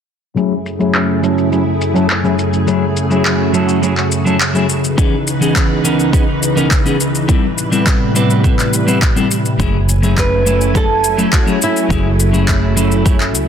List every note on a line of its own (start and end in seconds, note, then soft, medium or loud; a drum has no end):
0.36 4.65 F#2 medium
0.36 7.25 C#3 medium
0.36 0.52 F#3 medium
0.36 0.53 A3 medium
0.36 4.65 A3 medium
0.36 0.53 C#4 medium
0.36 2.65 E4 medium
0.36 0.53 E4 medium
0.36 4.65 G#4 medium
0.36 0.53 G#4 medium
0.36 shaker soft
0.66 shaker medium
0.79 1.19 F#3 medium
0.79 1.19 A3 medium
0.79 1.20 C#4 medium
0.79 1.20 E4 medium
0.79 1.20 G#4 medium
0.79 shaker soft
0.95 clap medium
0.95 shaker soft
1.22 1.48 F#3 medium
1.22 1.48 A3 medium
1.22 1.49 C#4 medium
1.22 1.49 E4 medium
1.22 1.49 A4 medium
1.22 shaker medium
1.38 shaker soft
1.51 1.62 F#3 medium
1.51 1.62 A3 medium
1.51 1.62 C#4 medium
1.51 1.62 E4 medium
1.51 1.63 G#4 medium
1.51 shaker soft
1.81 shaker medium
1.94 2.05 F#3 medium
1.94 2.05 A3 medium
1.94 2.05 C#4 medium
1.94 2.06 E4 medium
1.94 2.06 A4 medium
1.94 shaker soft
2.10 clap medium
2.10 shaker soft
2.23 2.34 F#3 medium
2.23 2.34 A3 medium
2.23 2.34 C#4 medium
2.23 2.35 E4 medium
2.23 2.35 G#4 medium
2.23 shaker soft
2.39 shaker medium
2.53 shaker soft
2.67 2.83 F#3 medium
2.67 2.84 A3 medium
2.67 2.84 C#4 medium
2.67 2.84 E4 medium
2.67 4.68 F#4 medium
2.67 2.84 G#4 loud
2.67 shaker soft
2.97 shaker medium
3.10 3.50 F#3 medium
3.10 3.50 A3 medium
3.10 3.51 C#4 medium
3.10 3.51 E4 medium
3.10 3.51 G#4 medium
3.10 shaker soft
3.25 clap medium
3.25 shaker soft
3.53 3.79 F#3 medium
3.53 3.79 A3 medium
3.53 3.79 C#4 medium
3.53 3.80 E4 medium
3.53 3.80 A4 medium
3.53 shaker medium
3.69 shaker soft
3.82 3.93 F#3 medium
3.82 3.93 A3 medium
3.82 3.93 C#4 medium
3.82 3.93 E4 medium
3.82 3.93 G#4 medium
3.82 shaker soft
3.97 clap soft
4.12 shaker medium
4.25 4.36 F#3 loud
4.25 4.36 A3 medium
4.25 4.36 C#4 medium
4.25 4.36 E4 medium
4.25 4.37 A4 medium
4.25 shaker soft
4.41 clap medium
4.41 shaker soft
4.54 4.65 F#3 medium
4.54 4.65 A3 medium
4.54 4.65 C#4 medium
4.54 4.65 E4 medium
4.54 4.65 G#4 loud
4.54 shaker soft
4.69 7.27 C#2 medium
4.69 9.56 E3 medium
4.69 7.27 D#4 medium
4.69 7.27 B4 medium
4.69 shaker medium
4.84 shaker soft
4.97 5.14 E3 medium
4.97 5.14 B3 medium
4.97 5.14 C#4 medium
4.97 5.15 D#4 medium
4.97 5.15 G#4 loud
4.97 kick medium
4.97 shaker soft
5.27 shaker medium
5.40 5.81 E3 medium
5.40 5.81 B3 medium
5.40 5.81 C#4 medium
5.40 5.81 D#4 medium
5.40 5.82 G#4 medium
5.40 shaker soft
5.56 kick loud
5.56 clap medium
5.56 shaker soft
5.83 6.09 E3 medium
5.83 6.10 B3 medium
5.83 6.10 C#4 medium
5.83 6.10 D#4 medium
5.83 6.10 A#4 medium
5.83 shaker medium
5.99 shaker soft
6.12 6.23 E3 medium
6.12 6.23 B3 medium
6.12 6.24 C#4 medium
6.12 6.24 D#4 medium
6.12 6.24 G#4 medium
6.12 kick loud
6.12 shaker soft
6.43 shaker medium
6.56 6.66 E3 medium
6.56 6.67 B3 medium
6.56 6.67 C#4 medium
6.56 6.67 D#4 medium
6.56 6.67 A#4 loud
6.56 shaker soft
6.71 kick loud
6.71 clap medium
6.71 shaker soft
6.85 6.95 E3 medium
6.85 6.96 B3 medium
6.85 6.96 C#4 medium
6.85 6.96 D#4 medium
6.85 6.96 G#4 loud
6.85 shaker soft
7.00 shaker medium
7.15 shaker soft
7.28 9.58 A2 medium
7.28 9.58 C3 medium
7.28 7.45 G3 loud
7.28 9.58 G3 medium
7.28 7.45 B3 medium
7.28 7.45 C4 medium
7.28 7.46 E4 medium
7.28 7.46 A4 medium
7.28 9.58 B4 medium
7.28 kick loud
7.28 shaker soft
7.58 shaker medium
7.72 8.12 G3 medium
7.72 8.12 B3 medium
7.72 8.12 C4 medium
7.72 8.12 E4 medium
7.72 8.13 A4 medium
7.72 shaker soft
7.86 kick loud
7.86 clap medium
7.86 shaker soft
8.15 8.41 G3 medium
8.15 8.41 B3 medium
8.15 8.41 C4 medium
8.15 8.41 E4 medium
8.15 8.41 B4 medium
8.15 shaker medium
8.30 shaker soft
8.44 8.54 G3 medium
8.44 8.54 B3 medium
8.44 8.55 C4 medium
8.44 8.55 E4 medium
8.44 8.55 A4 medium
8.44 kick loud
8.44 shaker soft
8.59 clap soft
8.59 shaker soft
8.73 shaker medium
8.87 8.97 G3 medium
8.87 8.98 B3 medium
8.87 8.98 C4 medium
8.87 8.98 E4 medium
8.87 8.98 B4 loud
8.87 shaker soft
9.02 kick loud
9.02 clap medium
9.02 shaker soft
9.16 9.26 G3 medium
9.16 9.26 B3 medium
9.16 9.27 C4 medium
9.16 9.27 E4 medium
9.16 9.27 A4 medium
9.16 shaker soft
9.31 shaker medium
9.45 shaker soft
9.59 11.24 F#1 medium
9.59 9.76 F#3 loud
9.59 13.48 F#3 medium
9.59 9.76 A3 medium
9.59 13.48 A3 medium
9.59 9.76 C#4 medium
9.59 13.48 C#4 medium
9.59 9.76 E4 medium
9.59 13.48 E4 medium
9.59 9.76 G#4 loud
9.59 13.48 G#5 medium
9.59 kick loud
9.59 shaker soft
9.89 shaker medium
10.02 10.42 F#3 medium
10.02 10.43 A3 medium
10.02 10.43 C#4 medium
10.02 10.43 E4 medium
10.02 10.43 G#4 medium
10.02 shaker soft
10.17 10.72 B4 loud
10.17 kick loud
10.17 clap medium
10.17 shaker soft
10.45 10.71 F#3 medium
10.45 10.71 A3 medium
10.45 10.71 C#4 medium
10.45 10.72 E4 medium
10.45 10.72 A4 medium
10.45 shaker medium
10.61 shaker soft
10.74 10.85 F#3 medium
10.74 10.85 A3 medium
10.74 10.85 C#4 medium
10.74 10.85 E4 medium
10.74 10.86 G#4 medium
10.74 11.35 A4 medium
10.74 kick loud
10.74 shaker soft
11.04 shaker medium
11.17 11.28 F#3 medium
11.17 11.28 A3 medium
11.17 11.28 C#4 medium
11.17 11.29 E4 medium
11.17 11.29 A4 loud
11.17 shaker soft
11.33 11.61 F#4 medium
11.33 kick loud
11.33 clap medium
11.33 shaker soft
11.46 11.57 F#3 medium
11.46 11.57 A3 medium
11.46 11.57 C#4 medium
11.46 11.57 E4 medium
11.46 11.58 G#4 medium
11.46 shaker soft
11.62 13.48 E4 medium
11.62 shaker medium
11.76 shaker soft
11.89 13.35 F#1 medium
11.89 12.06 F#3 medium
11.89 12.06 A3 medium
11.89 12.07 C#4 medium
11.89 12.07 E4 medium
11.89 12.07 G#4 loud
11.89 kick loud
11.89 shaker soft
12.20 shaker medium
12.32 12.73 F#3 medium
12.32 12.73 A3 medium
12.32 12.73 C#4 medium
12.32 12.74 E4 medium
12.32 12.74 G#4 medium
12.32 shaker soft
12.48 kick loud
12.48 clap loud
12.48 shaker soft
12.76 13.02 F#3 medium
12.76 13.02 A3 medium
12.76 13.02 C#4 medium
12.76 13.03 E4 medium
12.76 13.03 A4 loud
12.76 shaker medium
12.92 shaker soft
13.05 13.15 F#3 medium
13.05 13.16 A3 medium
13.05 13.16 C#4 medium
13.05 13.16 E4 medium
13.05 13.16 G#4 medium
13.05 kick loud
13.05 shaker soft
13.20 clap soft
13.35 13.48 C#2 medium
13.35 shaker medium